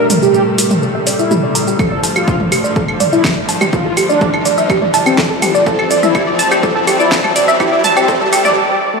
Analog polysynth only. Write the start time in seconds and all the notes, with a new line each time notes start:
0.22 G4
1.19 E4
1.79 A4
2.16 F4
3.13 E4
3.73 F4
4.09 D4
5.06 C4
5.67 A4
6.03 E4
7.00 E4
7.60 E4
7.97 C4
8.93 A3